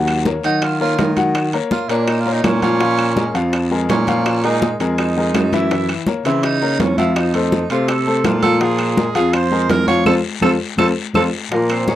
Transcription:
Already playing: baritone saxophone D#2, grand piano F#3 F#4 F#5
0.08 high conga, high timbale, claves
0.25 grand piano A#3 A#4 C#5, high bongo, high conga, low timbale, short guiro
0.43 baritone saxophone D#3, grand piano F#3 F#4 F#5, tenor saxophone D#4, high bongo, high conga, high timbale, short guiro
0.62 tenor saxophone F4, high bongo, high conga, high timbale, long guiro, claves
0.80 grand piano A#3 A#4 C#5, tenor saxophone F4, high bongo, high conga
0.98 baritone saxophone D#3, high bongo, low bongo, high conga, high timbale, low timbale, short guiro
1.17 grand piano F#3 F#4 F#5, high bongo, high conga, high timbale, short guiro
1.35 high bongo, high conga, high timbale, long guiro, claves
1.53 grand piano A#3 A#4 C#5, high conga, high timbale
1.71 tenor saxophone F4, high bongo, high conga, low timbale, short guiro
1.89 baritone saxophone A#2, grand piano A#3 A#4 C#5, tenor saxophone D4, high bongo, high timbale, short guiro
2.07 tenor saxophone D#4, high bongo, high conga, high timbale, long guiro, claves
2.20 tenor saxophone F4
2.26 grand piano A#3 A#4 C#5, high bongo, high conga
2.32 tenor saxophone D#4
2.43 baritone saxophone A#2, tenor saxophone C#4, high bongo, low bongo, high conga, high timbale, low timbale, short guiro, claves
2.62 grand piano F3 F4 F5, tenor saxophone C#4, high conga, high timbale, short guiro
2.80 grand piano F3 F4 F5, high bongo, high conga, high timbale, long guiro
2.99 high conga, high timbale, claves
3.17 grand piano G#3 G#4 A#4, high bongo, high conga, low timbale, short guiro
3.34 baritone saxophone F2, grand piano F3 F4 F5, high bongo, high conga, high timbale, short guiro
3.53 high bongo, high conga, high timbale, long guiro, claves
3.71 grand piano G#3 G#4 A#4, high bongo, high conga
3.89 baritone saxophone A#2, tenor saxophone C#4, high bongo, low bongo, high conga, high timbale, low timbale, short guiro
4.07 grand piano F3 F4 F5, high bongo, high conga, high timbale, short guiro
4.26 high bongo, high conga, high timbale, long guiro, claves
4.44 grand piano G#3 G#4 A#4, tenor saxophone D#4, high conga, high timbale
4.62 high bongo, high conga, low timbale, short guiro
4.80 baritone saxophone F2, grand piano G#3 G#4 A#4, high bongo, high timbale, short guiro
4.98 tenor saxophone D#4, high bongo, high conga, high timbale, long guiro, claves
5.16 grand piano G#3 G#4 A#4, high bongo, high conga
5.34 baritone saxophone F#2, high bongo, low bongo, high conga, high timbale, low timbale, short guiro, claves
5.52 grand piano E3 E4 E5, tenor saxophone E4, high conga, high timbale, short guiro
5.70 grand piano E3 E4 E5, high bongo, high conga, high timbale, long guiro
5.89 high conga, high timbale, claves
6.06 grand piano A#3 A#4 C#5, high bongo, high conga, low timbale, short guiro
6.25 baritone saxophone C#3, grand piano E3 E4 E5, tenor saxophone C4, high bongo, high conga, high timbale, short guiro
6.43 tenor saxophone D#4, high bongo, high conga, high timbale, long guiro, claves
6.62 grand piano A#3 A#4 C#5, high bongo, high conga
6.80 baritone saxophone F2, tenor saxophone C#4, high bongo, low bongo, high conga, high timbale, low timbale, short guiro
6.98 grand piano F3 F4 F5, tenor saxophone E4, high bongo, high conga, high timbale, short guiro
7.16 tenor saxophone D#4, high bongo, high conga, high timbale, long guiro, claves
7.34 grand piano A3 A4 C5, high conga, high timbale
7.52 high bongo, high conga, low timbale, short guiro
7.70 baritone saxophone C3, grand piano A3 A4 C5, tenor saxophone F4, high bongo, high timbale, short guiro
7.88 tenor saxophone A4, high bongo, high conga, high timbale, long guiro, claves
8.07 grand piano A3 A4 C5, high bongo, high conga
8.24 baritone saxophone A#2, tenor saxophone F4, high bongo, low bongo, high conga, high timbale, low timbale, short guiro, claves
8.43 grand piano F3 F4 F5, tenor saxophone A4, high conga, high timbale, short guiro
8.61 grand piano F3 F4 F5, tenor saxophone G#4, high bongo, high conga, high timbale, long guiro
8.79 high conga, high timbale, claves
8.97 grand piano G#3 G#4 A#4, high bongo, high conga, low timbale, short guiro
9.15 baritone saxophone F2, grand piano F3 F4 F5, tenor saxophone G#4, high bongo, high conga, high timbale, short guiro
9.33 tenor saxophone C5, high bongo, high conga, high timbale, long guiro, claves
9.51 grand piano G#3 G#4 A#4, high bongo, high conga
9.69 baritone saxophone F2, tenor saxophone A#4, high bongo, low bongo, high conga, high timbale, low timbale, short guiro
9.88 grand piano F3 F4 F5, tenor saxophone C#5, high bongo, high conga, high timbale, short guiro
10.06 baritone saxophone F2, grand piano F4 A4 C5, tenor saxophone A4, low bongo, high conga, high timbale, long guiro, claves
10.42 baritone saxophone F2, grand piano F4 A4 C5, tenor saxophone A4, low bongo, high conga, high timbale, long guiro, claves
10.78 baritone saxophone F2, grand piano F4 A4 C5, tenor saxophone A4, low bongo, high conga, high timbale, long guiro, claves
11.14 baritone saxophone F2, grand piano F4 A4 C5, tenor saxophone A4, low bongo, high conga, high timbale, long guiro, claves
11.51 baritone saxophone A#2, grand piano F3 F4 F5, tenor saxophone A#3, vibraphone A#4, high bongo, high conga, high timbale, long guiro
11.69 tenor saxophone C4, vibraphone C5, high conga, high timbale, claves
11.88 grand piano G#3 G#4 A#4, tenor saxophone C#4, vibraphone C#5, high bongo, high conga, low timbale, short guiro

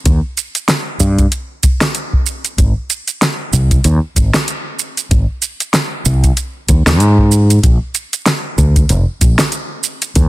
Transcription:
0.06 fretless electric bass D#2, kick, closed hi-hat, shaker
0.37 closed hi-hat, shaker
0.55 closed hi-hat, shaker
0.68 snare, closed hi-hat, shaker
1.00 fretless electric bass G2, kick, shaker
1.18 kick, closed hi-hat, shaker
1.32 closed hi-hat, shaker
1.63 kick, closed hi-hat, shaker
1.81 snare, closed hi-hat, shaker
1.95 closed hi-hat, shaker
2.13 kick
2.26 shaker
2.45 closed hi-hat, shaker
2.58 fretless electric bass G#1, kick, closed hi-hat, shaker
2.90 closed hi-hat, shaker
3.08 closed hi-hat, shaker
3.22 snare, closed hi-hat, shaker
3.53 fretless electric bass C2, kick, shaker
3.71 kick, closed hi-hat, shaker
3.84 fretless electric bass D#2, closed hi-hat, shaker
4.16 fretless electric bass G#1, kick, closed hi-hat, shaker
4.34 snare, closed hi-hat, shaker
4.48 closed hi-hat, shaker
4.79 shaker
4.97 closed hi-hat, shaker
5.11 fretless electric bass G#1, kick, closed hi-hat, shaker
5.42 closed hi-hat, shaker
5.60 closed hi-hat, shaker
5.74 snare, closed hi-hat, shaker
6.05 fretless electric bass C2, kick, shaker
6.24 kick, closed hi-hat, shaker
6.37 closed hi-hat, shaker
6.68 fretless electric bass D#2, kick, closed hi-hat, shaker
6.86 fretless electric bass D#2, snare, closed hi-hat, shaker
7.00 fretless electric bass G#2, closed hi-hat, shaker
7.18 kick
7.32 shaker
7.50 closed hi-hat, shaker
7.63 fretless electric bass A#1, kick, closed hi-hat, shaker
7.95 closed hi-hat, shaker
8.13 closed hi-hat, shaker
8.26 snare, closed hi-hat, shaker
8.58 fretless electric bass D2, kick, shaker
8.76 kick, closed hi-hat, shaker
8.89 fretless electric bass F1, closed hi-hat, shaker
9.21 fretless electric bass A#1, kick, closed hi-hat, shaker
9.39 snare, closed hi-hat, shaker
9.52 closed hi-hat, shaker
9.84 shaker
10.02 closed hi-hat, shaker
10.15 fretless electric bass D#2, kick, closed hi-hat, shaker

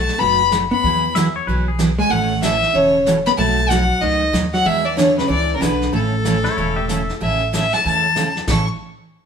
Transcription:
Already playing: hollow-body jazz guitar A3, fiddle A5
0.08 snare
0.18 upright bass F#1, steel-string acoustic guitar B2 F#3 A3 D#4 F#4, hollow-body jazz guitar B3, fiddle B5, brush sweep
0.51 steel-string acoustic guitar B2 F#3 A3 D#4 F#4, snare, hi-hat pedal
0.71 hollow-body jazz guitar B3, fiddle B5
0.84 upright bass E2, steel-string acoustic guitar E3 F#3 B3 E4 G#4, brush sweep
1.15 steel-string acoustic guitar E3 F#3 B3 E4 G#4, pedal steel guitar E5, snare, hi-hat pedal
1.36 pedal steel guitar C#5
1.47 upright bass B1, steel-string acoustic guitar E3 F#3 B3 E4 G#4, pedal steel guitar B4, brush sweep
1.68 pedal steel guitar G#4
1.79 steel-string acoustic guitar E3 F#3 B3 E4 G#4, snare, hi-hat pedal
1.98 hollow-body jazz guitar G#3, fiddle G#5
2.10 upright bass A1, steel-string acoustic guitar B2 E3 A3 C#4 A4, hollow-body jazz guitar A3, fiddle F#5, brush sweep
2.42 steel-string acoustic guitar B2 E3 A3 C#4 A4, hollow-body jazz guitar E3, fiddle E5, snare, hi-hat pedal
2.63 snare
2.73 upright bass E1, steel-string acoustic guitar B2 E3 A3 C#4 A4, hollow-body jazz guitar C#3, fiddle C#5, brush sweep
3.06 steel-string acoustic guitar B2 E3 A3 C#4 A4, snare, hi-hat pedal
3.26 hollow-body jazz guitar B3, fiddle B5, snare
3.37 upright bass B1, steel-string acoustic guitar B2 F#3 A3 D#4 F#4, hollow-body jazz guitar A3, fiddle A5, brush sweep
3.69 steel-string acoustic guitar B2 F#3 A3 D#4 F#4, hollow-body jazz guitar F#3, fiddle F#5, snare, hi-hat pedal
4.01 upright bass C#2, steel-string acoustic guitar B2 F#3 A3 D#4 F#4, hollow-body jazz guitar D#3, fiddle D#5, brush sweep
4.33 upright bass D#2, steel-string acoustic guitar B2 F#3 A3 D#4 F#4, snare, hi-hat pedal
4.53 hollow-body jazz guitar F#3, fiddle F#5, snare
4.65 upright bass E2, steel-string acoustic guitar E3 B3 D4 G#4, hollow-body jazz guitar G#3, fiddle E5, brush sweep
4.85 hollow-body jazz guitar E3, fiddle D5
4.97 hollow-body jazz guitar D3, steel-string acoustic guitar E3 B3 D4 G#4, fiddle C#5, snare, hi-hat pedal
5.08 snare
5.18 hollow-body jazz guitar C#3, fiddle B4, snare
5.28 upright bass C#2, steel-string acoustic guitar E3 B3 D4 G#4, hollow-body jazz guitar E3, fiddle D5, brush sweep
5.55 hollow-body jazz guitar C#3, fiddle A#4
5.61 upright bass B1, hollow-body jazz guitar D3, steel-string acoustic guitar E3 B3 D4 G#4, fiddle B4, snare, hi-hat pedal
5.81 snare
5.93 upright bass A1, hollow-body jazz guitar A2, steel-string acoustic guitar C#3 E3 A3 C#4 A4, fiddle A4, brush sweep
6.25 steel-string acoustic guitar C#3 E3 A3 C#4 A4, snare, hi-hat pedal
6.44 pedal steel guitar E4 C#5, snare
6.57 upright bass E1, steel-string acoustic guitar C#3 E3 A3 C#4 A4, pedal steel guitar E4 C#5, brush sweep
6.76 pedal steel guitar G4 E5
6.88 steel-string acoustic guitar C#3 E3 A3 C#4 A4, pedal steel guitar E5, snare, hi-hat pedal
7.09 snare
7.20 upright bass A1, steel-string acoustic guitar C#3 E3 A3 C#4 A4, fiddle E5, brush sweep
7.53 steel-string acoustic guitar C#3 E3 A3 C#4 A4, fiddle E5, snare, hi-hat pedal
7.73 fiddle A5, snare
7.84 upright bass E2, steel-string acoustic guitar C#3 E3 A3 C#4 A4, fiddle A5, brush sweep
8.16 steel-string acoustic guitar C#3 E3 A3 C#4 A4, snare, hi-hat pedal
8.36 snare
8.47 upright bass A1, steel-string acoustic guitar A2 C#3 E3 A3 C#4 A4, fiddle C#6, kick, snare, crash

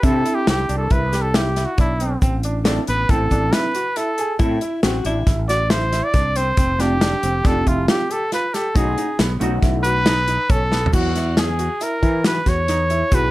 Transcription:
0.03 fretless electric bass C3, hollow-body jazz guitar C4 D4 E4 A4, grand piano E4, trumpet A4, kick, closed hi-hat, shaker
0.25 grand piano E4, closed hi-hat
0.35 trumpet G4
0.47 fretless electric bass C2, grand piano C4, trumpet G4, snare, closed hi-hat
0.69 fretless electric bass C2, grand piano D4, closed hi-hat
0.77 trumpet A4
0.90 fretless electric bass C2, grand piano E4, trumpet B4, kick, closed hi-hat
1.13 grand piano G4, snare, closed hi-hat, shaker
1.22 trumpet A4
1.34 grand piano E4, trumpet G4, snare, closed hi-hat
1.56 grand piano E4, snare, closed hi-hat, shaker
1.65 trumpet F#4
1.78 fretless electric bass B1, grand piano D4, trumpet E4, kick, closed hi-hat
2.00 grand piano C4, closed hi-hat
2.22 fretless electric bass A1, grand piano C4, kick, closed hi-hat, shaker
2.43 grand piano D4, closed hi-hat
2.64 hollow-body jazz guitar A3 C4 E4 A4, grand piano D4, snare, closed hi-hat, shaker
2.87 fretless electric bass A1, grand piano B3, trumpet B4, closed hi-hat
3.09 fretless electric bass A1, hollow-body jazz guitar A3 C4 E4 A4, grand piano C4, trumpet A4, kick, closed hi-hat
3.31 fretless electric bass A1, grand piano D4, kick, closed hi-hat, shaker
3.52 grand piano E4, trumpet B4, snare, closed hi-hat
3.75 grand piano F#4, closed hi-hat
3.96 grand piano E4, trumpet A4, closed hi-hat
4.18 grand piano G#4, closed hi-hat
4.39 fretless electric bass A2, hollow-body jazz guitar A3 C4 E4 A4, alto saxophone E4, grand piano E4, kick, closed hi-hat, shaker
4.61 grand piano E4, closed hi-hat
4.83 fretless electric bass A1, grand piano C4, alto saxophone F#4, snare, closed hi-hat
5.04 fretless electric bass A1, grand piano D4, alto saxophone E4, closed hi-hat
5.27 fretless electric bass A1, grand piano E4, kick, snare, closed hi-hat
5.49 grand piano F#4, trumpet D5, snare, closed hi-hat, shaker
5.70 grand piano E4, trumpet C5, snare, closed hi-hat
5.93 grand piano E4, snare, closed hi-hat
6.04 trumpet D5
6.14 fretless electric bass C2, grand piano D4, kick, snare, closed hi-hat
6.36 grand piano C4, trumpet C5, closed hi-hat
6.57 fretless electric bass F1, grand piano C4, kick, closed hi-hat, shaker
6.79 hollow-body jazz guitar A3 C4 F4 G4, grand piano D4, trumpet G4, snare, closed hi-hat
7.01 grand piano D4, snare, closed hi-hat, shaker
7.23 fretless electric bass F1, grand piano C4, closed hi-hat
7.44 fretless electric bass F1, hollow-body jazz guitar A3 C4 F4 G4, grand piano D4, trumpet A4, kick, snare, closed hi-hat
7.66 fretless electric bass F1, grand piano E4, trumpet F4, kick, closed hi-hat, shaker
7.88 grand piano F4, trumpet G4, snare, closed hi-hat
8.10 grand piano G4, trumpet A4, closed hi-hat
8.32 grand piano F4, trumpet B4, snare, closed hi-hat
8.54 grand piano G4, trumpet A4, snare, closed hi-hat
8.75 fretless electric bass B1, hollow-body jazz guitar A3 C#4 D#4 F#4, grand piano D#4, trumpet G#4, kick, closed hi-hat, shaker
8.98 grand piano D#4, closed hi-hat
9.19 fretless electric bass B1, grand piano B3, snare, closed hi-hat
9.40 fretless electric bass B1, hollow-body jazz guitar A3 C#4 D#4 F#4, grand piano D#4, closed hi-hat, shaker
9.62 fretless electric bass B1, grand piano E4, kick, snare, closed hi-hat
9.84 grand piano F#4, trumpet B4, closed hi-hat, shaker
10.06 grand piano D#4, snare, closed hi-hat
10.28 grand piano D#4, closed hi-hat
10.49 fretless electric bass B1, grand piano C#4, trumpet A4, kick, closed hi-hat
10.71 grand piano B3, snare
10.86 floor tom
10.92 fretless electric bass E2, hollow-body jazz guitar F#3 B3 E4 F#4, grand piano F#4, trumpet F#4, kick, crash, shaker
11.16 grand piano E4, snare, closed hi-hat
11.37 grand piano G#4, trumpet G#4, snare, closed hi-hat
11.59 grand piano F#4, closed hi-hat
11.81 grand piano E4, trumpet A#4, closed hi-hat, shaker
12.03 fretless electric bass E3, grand piano E4, kick, closed hi-hat
12.24 grand piano F#4, trumpet B4, snare, closed hi-hat
12.46 fretless electric bass E2, grand piano F#4, trumpet C#5, kick, snare, closed hi-hat, shaker
12.68 grand piano D#4, snare, closed hi-hat
12.90 grand piano E4, closed hi-hat
13.11 fretless electric bass B1, hollow-body jazz guitar F#3 B3 E4 G#4, grand piano F#4, trumpet B4, kick, closed hi-hat, shaker

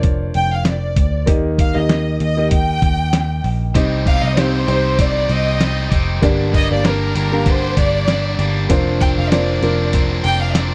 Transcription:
Already playing: picked electric bass F1, grand piano A#3 D4 F4 C5 C#5 D5
0.03 kick, closed hi-hat
0.34 picked electric bass F1, violin section G5, closed hi-hat
0.53 violin section F5
0.65 violin section D5, snare, closed hi-hat
0.96 picked electric bass D2, kick, closed hi-hat
1.26 picked electric bass D#2, grand piano D#3 A#3 D#4 G4 D#5, kick, closed hi-hat
1.58 violin section F5, kick, closed hi-hat
1.74 picked electric bass D#2, grand piano A#3 D#4 G4 D#5, violin section D#5, snare
1.89 snare, closed hi-hat
2.20 picked electric bass D#2, violin section D#5, closed hi-hat
2.37 grand piano A#3 D#4 G4 D#5
2.51 violin section G5, kick, closed hi-hat
2.82 picked electric bass D#2, kick, closed hi-hat
3.13 snare, closed hi-hat
3.44 picked electric bass A#1, open hi-hat
3.74 picked electric bass C2, overdriven electric guitar C3 G3 C4 D#4 G4, grand piano C3 C4 D#4 G4 D#5, kick, closed hi-hat
4.05 overdriven electric guitar C4 D#4 G4, violin section F5, kick, closed hi-hat
4.23 picked electric bass C2, violin section D#5
4.36 overdriven electric guitar G3 C4 D#4 G4, grand piano C4 D#4 G4 F5, violin section C5, snare, closed hi-hat
4.67 picked electric bass C2, grand piano C4 D#4 G4 C5, overdriven electric guitar C4 D#4 G4, closed hi-hat
4.98 overdriven electric guitar C3 G3 C4 D#4 G4, violin section D5, kick, closed hi-hat
5.29 picked electric bass C2, overdriven electric guitar C4 D#4 G4, violin section D#5, closed hi-hat
5.60 overdriven electric guitar G3 C4 D#4 G4, snare, closed hi-hat
5.90 picked electric bass F1, overdriven electric guitar C4 D#4 G4, kick, closed hi-hat
6.22 picked electric bass G1, overdriven electric guitar G2 D3 G3 A#3 D4 G4, grand piano G2 A#3 D4 G4 D5, kick, closed hi-hat
6.53 overdriven electric guitar G3 A#3 D4 G4, violin section D#5, kick, closed hi-hat
6.70 picked electric bass G1, grand piano A#3 D4 G4 F5, violin section D5
6.83 overdriven electric guitar G3 A#3 D4 G4, violin section A#4, snare, closed hi-hat
7.15 picked electric bass G1, overdriven electric guitar G3 A#3 D4 G4, closed hi-hat
7.32 grand piano A#3 D4 G4 F5
7.46 overdriven electric guitar G2 D3 G3 A#3 D4 G4, violin section C5, kick, closed hi-hat
7.76 picked electric bass G1, overdriven electric guitar G3 A#3 D4 G4, violin section D5, kick, closed hi-hat
8.07 overdriven electric guitar G3 A#3 D4 G4, snare, closed hi-hat
8.39 picked electric bass G1, overdriven electric guitar G3 A#3 D4 G4, closed hi-hat
8.69 picked electric bass F1, overdriven electric guitar F3 C4 D4 A#4, grand piano A#3 D4 F4 C5, kick, closed hi-hat
9.00 overdriven electric guitar C4 D4 A#4, violin section G5, kick, closed hi-hat
9.18 picked electric bass F1, violin section F5
9.31 overdriven electric guitar F3 C4 D4 A#4, grand piano A#3 D4 F4 C5, violin section D5, snare, closed hi-hat
9.62 picked electric bass F1, grand piano A#3 D4 F4 A#4, overdriven electric guitar C4 D4 A#4, closed hi-hat
9.93 overdriven electric guitar F3 C4 D4 A#4, kick, closed hi-hat
10.24 picked electric bass F1, overdriven electric guitar C4 D4 A#4, violin section G5, closed hi-hat
10.42 violin section F5
10.55 overdriven electric guitar F3 C4 D4 A#4, violin section D5, snare, closed hi-hat

